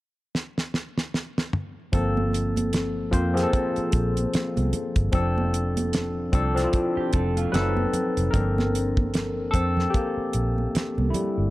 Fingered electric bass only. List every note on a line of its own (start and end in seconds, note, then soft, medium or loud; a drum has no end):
1.93 3.09 G1 medium
3.13 3.45 F2 medium
3.78 muted fingered electric bass stroke soft
3.93 4.25 A#1 medium
4.34 muted fingered electric bass stroke soft
4.57 4.70 C2 medium
4.96 5.10 G1 medium
5.13 6.30 F1 medium
6.33 6.65 C2 medium
6.97 muted fingered electric bass stroke soft
7.14 7.46 F1 medium
7.53 7.85 F#1 medium
8.17 8.30 F1 medium
8.34 9.50 G1 medium
9.54 9.86 F2 medium
10.17 muted fingered electric bass stroke soft
10.34 10.66 A#1 medium
10.75 muted fingered electric bass stroke soft
10.98 11.11 C2 medium
11.38 11.50 G1 medium